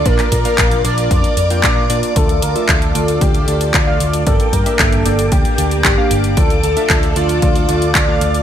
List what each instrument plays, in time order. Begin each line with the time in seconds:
Already playing: string machine F4 D5 D6
0.06 picked electric bass A#1, analog polysynth A#3 D4 F4 D5, string machine A#4, analog synth lead A#4, kick, closed hi-hat
0.19 clap, closed hi-hat
0.32 picked electric bass A#2, kick, closed hi-hat
0.45 analog polysynth A#3 D4 F4 F5, closed hi-hat
0.58 picked electric bass A#1, kick, clap, closed hi-hat
0.71 closed hi-hat
0.84 picked electric bass A#1, analog polysynth A#3 D4 F4 D5, analog synth lead D5, closed hi-hat
0.98 closed hi-hat
1.11 picked electric bass F2, kick, closed hi-hat
1.24 closed hi-hat
1.37 picked electric bass F2, closed hi-hat
1.50 analog polysynth A#3 D4 F4 G5, closed hi-hat
1.63 picked electric bass A#2, analog polysynth A#3 D4 F4 F5, analog synth lead D5, kick, clap, closed hi-hat
1.90 picked electric bass A#2, analog polysynth A#3 D4 F4 D5, closed hi-hat
2.03 closed hi-hat
2.16 picked electric bass D2, analog polysynth A3 D4 F4 D5, string machine A4, analog synth lead A4, kick, closed hi-hat
2.29 closed hi-hat
2.42 picked electric bass D2, analog synth lead A#4, closed hi-hat
2.56 analog polysynth A3 D4 F4 E5, closed hi-hat
2.69 picked electric bass D2, analog synth lead A4, kick, clap, closed hi-hat
2.82 closed hi-hat
2.95 picked electric bass D2, analog polysynth A3 D4 F4 D5, closed hi-hat
3.08 closed hi-hat
3.21 picked electric bass D2, analog synth lead G4, kick, closed hi-hat
3.35 closed hi-hat
3.48 picked electric bass D2, analog polysynth A3 D4 F4 D5, closed hi-hat
3.61 closed hi-hat
3.74 picked electric bass D2, analog synth lead D5, kick, clap, closed hi-hat
3.87 analog polysynth A3 D4 F4 F5
4.00 picked electric bass D2, closed hi-hat
4.13 closed hi-hat
4.27 picked electric bass G1, string machine A#3 D5 G5, analog polysynth A#3 D4 G4 D5, analog synth lead A4, kick, closed hi-hat
4.40 closed hi-hat
4.53 picked electric bass G2, analog synth lead A#4, kick, closed hi-hat
4.66 analog polysynth A#3 D4 G4 E5, closed hi-hat
4.79 picked electric bass G1, analog synth lead A4, kick, clap, closed hi-hat
4.92 closed hi-hat
5.06 picked electric bass G1, analog polysynth A#3 D4 G4 D5, closed hi-hat
5.19 closed hi-hat
5.32 picked electric bass D2, analog synth lead G4, kick, closed hi-hat
5.45 closed hi-hat
5.58 picked electric bass D2, analog polysynth A#3 D4 G4 D5, closed hi-hat
5.71 closed hi-hat
5.85 picked electric bass G1, analog synth lead G4, kick, clap, closed hi-hat
5.98 analog polysynth A#3 D4 G4 F5
6.11 picked electric bass G1, closed hi-hat
6.24 closed hi-hat
6.37 picked electric bass D2, analog polysynth A3 D4 F4 D5, string machine F4 A4, analog synth lead A4, kick, closed hi-hat
6.50 closed hi-hat
6.63 picked electric bass D2, analog synth lead A4, closed hi-hat
6.77 analog polysynth A3 D4 F4 E5, closed hi-hat
6.90 picked electric bass D2, kick, clap, closed hi-hat
7.03 closed hi-hat
7.16 picked electric bass D2, analog polysynth A3 D4 F4 D5, analog synth lead F4, closed hi-hat
7.29 closed hi-hat
7.42 picked electric bass D2, kick, closed hi-hat
7.56 closed hi-hat
7.69 picked electric bass D2, analog polysynth A3 D4 F4 D5, closed hi-hat
7.82 closed hi-hat
7.95 picked electric bass D2, analog synth lead D5, kick, clap, closed hi-hat
8.08 analog polysynth A3 D4 F4 F5
8.21 picked electric bass D2, closed hi-hat
8.34 closed hi-hat